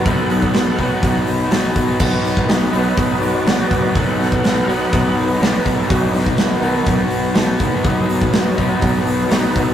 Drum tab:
CC |----------------|x---------------|----------------|----------------|
HH |o-o-o-o-o-o-o-o-|--o-o-o-o-o-o-o-|o-o-o-o-o-o-o-o-|o-o-o-o-o-o-o-o-|
SD |----o-------o---|----o-------o---|--o-o-------o---|--o-o-------o---|
BD |o--o--o-o-----o-|o--o----o-----o-|o--o----o-----o-|o--o----o-----o-|

CC |----------------|
HH |o-o-o-o-o-o-o-o-|
SD |----o-------o---|
BD |o--o--o-o-----o-|